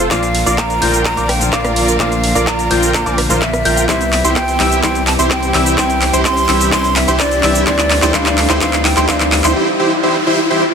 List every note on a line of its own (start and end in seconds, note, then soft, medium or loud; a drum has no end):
0.00 0.10 F3 loud
0.00 3.85 F3 medium
0.00 0.13 A3 medium
0.00 0.12 C4 medium
0.00 0.12 F4 loud
0.00 3.85 F4 medium
0.00 0.10 F5 medium
0.00 riser medium
0.10 0.44 A#1 medium
0.10 0.78 A#2 loud
0.10 3.85 D3 medium
0.10 0.79 F3 medium
0.10 0.79 A#3 medium
0.10 3.85 A#3 medium
0.10 0.79 D4 medium
0.10 0.24 F4 loud
0.10 0.80 F4 loud
0.10 0.24 A#4 medium
0.10 3.85 A#4 medium
0.10 0.24 D5 loud
0.10 0.60 F5 loud
0.10 0.24 D6 loud
0.10 kick loud
0.10 clap medium
0.10 closed hi-hat medium
0.10 cabasa medium
0.23 closed hi-hat soft
0.23 cabasa soft
0.35 open hi-hat loud
0.46 0.79 A#1 medium
0.46 0.79 F4 medium
0.46 0.79 A#4 medium
0.46 0.79 D5 loud
0.46 0.79 D6 loud
0.46 closed hi-hat soft
0.46 cabasa medium
0.58 1.05 A#5 loud
0.58 kick loud
0.58 clap medium
0.58 closed hi-hat medium
0.58 cabasa medium
0.70 closed hi-hat soft
0.70 cabasa soft
0.81 1.15 A#1 medium
0.81 1.37 A#2 medium
0.81 1.38 F3 medium
0.81 1.38 A#3 medium
0.81 1.38 D4 medium
0.81 1.14 F4 medium
0.81 1.39 F4 loud
0.81 1.14 A#4 medium
0.81 1.14 G5 loud
0.81 1.14 G6 loud
0.81 open hi-hat loud
0.94 closed hi-hat soft
0.94 cabasa medium
1.05 1.31 A#5 loud
1.05 kick loud
1.05 clap medium
1.05 closed hi-hat medium
1.05 cabasa medium
1.17 1.50 A#1 loud
1.17 1.30 F4 loud
1.17 1.30 A#4 medium
1.17 1.30 D5 loud
1.17 1.30 D6 loud
1.17 closed hi-hat soft
1.17 cabasa soft
1.29 1.54 G5 loud
1.29 cross-stick medium
1.29 open hi-hat loud
1.40 1.96 A#2 medium
1.40 1.97 F3 medium
1.40 1.97 A#3 medium
1.40 1.97 D4 medium
1.40 1.98 F4 medium
1.40 closed hi-hat soft
1.40 cabasa medium
1.53 1.98 A#1 loud
1.53 1.97 F4 medium
1.53 1.97 A#4 medium
1.53 1.97 D5 loud
1.53 1.99 F5 medium
1.53 1.97 D6 loud
1.53 kick loud
1.53 clap medium
1.53 closed hi-hat medium
1.53 cabasa medium
1.65 cross-stick medium
1.65 closed hi-hat soft
1.65 cabasa soft
1.76 open hi-hat loud
1.89 cabasa medium
1.99 2.33 A#1 loud
1.99 2.67 A#2 medium
1.99 2.68 F3 medium
1.99 2.68 A#3 medium
1.99 2.68 D4 medium
1.99 2.13 F4 loud
1.99 2.69 F4 loud
1.99 2.13 A#4 medium
1.99 2.13 D5 loud
1.99 2.49 F5 loud
1.99 2.13 D6 loud
1.99 kick loud
1.99 clap medium
1.99 closed hi-hat medium
1.99 cabasa medium
2.12 closed hi-hat soft
2.12 cabasa soft
2.24 open hi-hat loud
2.35 2.68 A#1 loud
2.35 2.68 F4 medium
2.35 2.68 A#4 medium
2.35 2.68 D5 loud
2.35 2.68 D6 loud
2.35 closed hi-hat soft
2.35 cabasa medium
2.47 2.73 A#5 loud
2.47 kick loud
2.47 clap medium
2.47 closed hi-hat medium
2.47 cabasa medium
2.59 closed hi-hat soft
2.59 cabasa soft
2.70 3.04 A#1 medium
2.70 3.26 A#2 medium
2.70 3.27 F3 medium
2.70 3.27 A#3 medium
2.70 3.27 D4 medium
2.70 3.03 F4 medium
2.70 3.28 F4 loud
2.70 3.03 A#4 medium
2.70 3.03 G5 loud
2.70 3.03 G6 loud
2.70 open hi-hat loud
2.83 closed hi-hat soft
2.83 cabasa medium
2.94 3.16 A#5 medium
2.94 kick loud
2.94 clap medium
2.94 closed hi-hat medium
2.94 cabasa medium
3.06 3.27 A#1 medium
3.06 3.19 F4 loud
3.06 3.19 A#4 medium
3.06 3.19 D5 loud
3.06 3.19 D6 loud
3.06 closed hi-hat soft
3.06 cabasa soft
3.18 cross-stick medium
3.18 open hi-hat loud
3.29 3.63 A#1 loud
3.29 3.86 A#2 medium
3.29 3.86 F3 medium
3.29 3.86 A#3 medium
3.29 3.86 D4 medium
3.29 3.42 F4 medium
3.29 3.87 F4 medium
3.29 3.43 A#4 medium
3.29 3.42 C5 medium
3.29 3.43 C6 medium
3.29 closed hi-hat soft
3.29 cabasa medium
3.42 3.86 E5 medium
3.42 kick loud
3.42 clap medium
3.42 closed hi-hat medium
3.42 cabasa medium
3.53 cross-stick medium
3.53 closed hi-hat soft
3.53 cabasa soft
3.65 3.87 A#1 loud
3.65 3.86 F4 medium
3.65 3.86 A#4 medium
3.65 3.86 G5 loud
3.65 3.86 G6 loud
3.65 open hi-hat loud
3.77 closed hi-hat soft
3.77 cabasa medium
3.88 4.22 C2 medium
3.88 7.63 C3 medium
3.88 4.56 E3 medium
3.88 7.63 E3 medium
3.88 4.57 G3 medium
3.88 7.63 G3 medium
3.88 4.57 C4 medium
3.88 4.02 E4 medium
3.88 7.63 E4 medium
3.88 4.58 E4 loud
3.88 4.02 G4 medium
3.88 7.63 G4 medium
3.88 4.02 C5 medium
3.88 4.38 E5 medium
3.88 4.02 C6 medium
3.88 kick loud
3.88 clap medium
3.88 closed hi-hat medium
3.88 cabasa medium
4.01 closed hi-hat soft
4.01 cabasa soft
4.13 clap medium
4.13 open hi-hat loud
4.24 4.57 C2 loud
4.24 4.57 E4 medium
4.24 4.57 G4 medium
4.24 4.57 C5 loud
4.24 4.57 C6 medium
4.24 closed hi-hat soft
4.24 cabasa medium
4.36 4.83 G5 loud
4.36 kick loud
4.36 clap medium
4.36 closed hi-hat medium
4.36 cabasa medium
4.48 closed hi-hat soft
4.48 cabasa soft
4.59 4.81 C2 medium
4.59 4.81 E3 medium
4.59 4.81 G3 medium
4.59 4.82 C4 medium
4.59 4.82 E4 medium
4.59 4.82 G4 medium
4.59 4.82 E5 loud
4.59 4.82 E6 medium
4.59 clap medium
4.59 open hi-hat loud
4.72 closed hi-hat soft
4.72 cabasa medium
4.82 5.16 C2 medium
4.82 5.51 E3 medium
4.82 5.51 G3 medium
4.82 5.52 C4 medium
4.82 4.96 E4 medium
4.82 5.52 E4 loud
4.82 4.96 C5 loud
4.82 5.05 G5 medium
4.82 4.96 C6 loud
4.82 kick loud
4.82 clap medium
4.82 closed hi-hat medium
4.82 cabasa medium
4.95 closed hi-hat soft
4.95 cabasa soft
5.07 5.13 A5 loud
5.07 clap medium
5.07 open hi-hat loud
5.19 5.52 C2 loud
5.19 5.51 E4 medium
5.19 5.51 G4 medium
5.19 5.51 C5 loud
5.19 5.51 C6 loud
5.19 closed hi-hat soft
5.19 cabasa medium
5.31 5.75 G5 loud
5.31 kick loud
5.31 clap medium
5.31 closed hi-hat medium
5.31 cabasa medium
5.43 closed hi-hat soft
5.43 cabasa soft
5.53 5.76 C2 loud
5.53 5.75 E3 medium
5.53 5.76 G3 medium
5.53 5.76 C4 medium
5.53 5.76 E4 medium
5.53 5.77 E4 medium
5.53 5.76 G4 medium
5.53 5.76 E5 medium
5.53 5.76 E6 loud
5.53 clap medium
5.53 open hi-hat loud
5.66 closed hi-hat soft
5.66 cabasa medium
5.77 6.11 C2 medium
5.77 6.45 E3 medium
5.77 6.46 G3 medium
5.77 6.46 C4 medium
5.77 5.91 E4 medium
5.77 6.47 E4 loud
5.77 5.91 G4 medium
5.77 5.91 C5 loud
5.77 6.22 G5 loud
5.77 5.91 C6 loud
5.77 kick loud
5.77 clap medium
5.77 closed hi-hat medium
5.77 cabasa medium
5.90 closed hi-hat soft
5.90 cabasa soft
6.02 clap medium
6.02 open hi-hat loud
6.13 6.46 C2 loud
6.13 6.46 E4 medium
6.13 6.46 G4 medium
6.13 6.46 C5 loud
6.13 6.46 C6 loud
6.13 closed hi-hat soft
6.13 cabasa medium
6.25 6.69 C6 loud
6.25 kick loud
6.25 clap medium
6.25 closed hi-hat medium
6.25 cabasa medium
6.37 closed hi-hat soft
6.37 cabasa soft
6.47 6.70 C2 medium
6.47 6.70 E3 medium
6.47 6.70 G3 medium
6.47 6.71 C4 medium
6.47 6.70 E4 medium
6.47 6.71 E4 medium
6.47 6.70 G4 medium
6.47 6.70 E5 loud
6.47 6.71 E6 medium
6.47 clap medium
6.47 open hi-hat loud
6.61 closed hi-hat soft
6.61 cabasa medium
6.71 7.05 C2 loud
6.71 7.40 E3 medium
6.71 7.40 G3 medium
6.71 7.41 C4 medium
6.71 6.85 E4 medium
6.71 7.41 E4 medium
6.71 6.85 G4 medium
6.71 6.85 C6 loud
6.71 6.97 C6 loud
6.71 kick loud
6.71 clap medium
6.71 closed hi-hat medium
6.71 cabasa medium
6.84 closed hi-hat soft
6.84 cabasa soft
6.96 7.21 E5 loud
6.96 clap loud
6.96 open hi-hat loud
7.08 7.41 C2 loud
7.08 7.40 E4 medium
7.08 7.40 G4 medium
7.08 7.40 C5 loud
7.08 7.40 C6 loud
7.08 closed hi-hat soft
7.08 cabasa medium
7.20 7.66 D5 loud
7.20 kick loud
7.20 clap medium
7.20 closed hi-hat medium
7.20 cabasa medium
7.31 closed hi-hat soft
7.31 cabasa soft
7.42 7.64 C2 loud
7.42 7.64 E3 medium
7.42 7.65 G3 medium
7.42 7.65 C4 medium
7.42 7.65 E4 medium
7.42 7.66 E4 loud
7.42 7.65 G4 medium
7.42 7.65 E5 loud
7.42 7.65 E6 loud
7.42 clap medium
7.42 open hi-hat loud
7.55 closed hi-hat soft
7.55 cabasa medium
7.66 8.00 D2 medium
7.66 9.54 D3 medium
7.66 8.11 E3 medium
7.66 8.12 G3 medium
7.66 9.54 A3 medium
7.66 8.12 C4 medium
7.66 7.79 E4 loud
7.66 8.13 E4 loud
7.66 7.79 G4 medium
7.66 9.54 A4 loud
7.66 7.79 C5 loud
7.66 8.16 D5 loud
7.66 7.80 C6 loud
7.66 kick loud
7.66 clap medium
7.66 closed hi-hat medium
7.66 cabasa medium
7.79 clap medium
7.79 closed hi-hat soft
7.79 cabasa soft
7.90 clap medium
7.90 open hi-hat loud
8.02 8.12 D2 medium
8.02 8.12 E4 medium
8.02 8.12 G4 medium
8.02 8.12 C5 loud
8.02 8.12 C6 loud
8.02 clap medium
8.02 closed hi-hat soft
8.02 cabasa medium
8.13 8.47 D2 medium
8.13 8.59 E3 medium
8.13 8.59 G3 medium
8.13 8.60 C4 medium
8.13 8.60 D4 loud
8.13 8.27 E4 loud
8.13 8.27 C5 loud
8.13 8.61 F5 loud
8.13 8.27 C6 loud
8.13 kick loud
8.13 clap medium
8.13 closed hi-hat medium
8.13 cabasa medium
8.26 clap medium
8.26 closed hi-hat soft
8.26 cabasa soft
8.38 clap medium
8.38 open hi-hat loud
8.49 8.59 D2 loud
8.49 8.59 E4 medium
8.49 8.59 G4 medium
8.49 8.59 C5 loud
8.49 8.59 C6 loud
8.49 clap medium
8.49 cabasa medium
8.60 8.94 D2 loud
8.60 9.06 E3 medium
8.60 9.06 G3 medium
8.60 9.07 C4 medium
8.60 8.74 E4 loud
8.60 9.07 E4 loud
8.60 8.74 G4 medium
8.60 8.74 C5 loud
8.60 8.86 F5 medium
8.60 8.74 C6 loud
8.60 kick loud
8.60 clap loud
8.60 closed hi-hat medium
8.60 cabasa medium
8.73 clap medium
8.73 closed hi-hat soft
8.73 cabasa soft
8.85 9.10 G5 loud
8.85 clap loud
8.85 open hi-hat loud
8.97 9.06 D2 loud
8.97 9.07 E4 medium
8.97 9.07 G4 medium
8.97 9.07 C5 loud
8.97 9.07 C6 loud
8.97 clap medium
8.97 closed hi-hat soft
8.97 cabasa medium
9.07 9.42 D2 loud
9.07 9.53 E3 medium
9.07 9.54 G3 medium
9.07 9.54 C4 medium
9.07 9.55 D4 loud
9.07 9.21 E4 loud
9.07 9.21 G4 medium
9.07 9.21 C5 loud
9.07 9.56 F5 medium
9.07 9.21 C6 loud
9.07 kick loud
9.07 clap loud
9.07 closed hi-hat medium
9.07 cabasa medium
9.20 clap medium
9.20 closed hi-hat soft
9.20 cabasa soft
9.32 clap loud
9.32 open hi-hat loud
9.44 9.53 D2 loud
9.44 9.54 E4 medium
9.44 9.54 G4 medium
9.44 9.54 C5 loud
9.44 9.54 C6 loud
9.44 clap medium
9.44 closed hi-hat soft
9.44 cabasa medium
9.56 9.68 E4 loud
9.56 9.68 G4 medium
9.56 9.68 C5 loud
9.56 noise sweep medium
9.79 9.92 E4 loud
9.79 9.92 G4 medium
9.79 9.92 C5 loud
10.03 10.16 E4 loud
10.03 10.16 G4 medium
10.03 10.16 C5 loud
10.27 10.39 E4 loud
10.27 10.39 G4 medium
10.27 10.39 C5 loud
10.50 10.63 E4 loud
10.50 10.63 G4 medium
10.50 10.63 C5 loud